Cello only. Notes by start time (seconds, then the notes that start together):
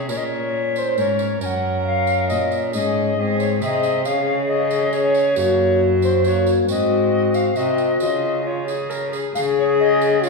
Already playing: C3
0.10 A#2
0.97 G#2
1.42 F#2
2.30 A#2
2.74 G#2
3.17 G#2
3.61 C3
4.06 C#3
5.37 F#2
6.68 G#2
7.56 C3
8.01 C#3
9.35 C#3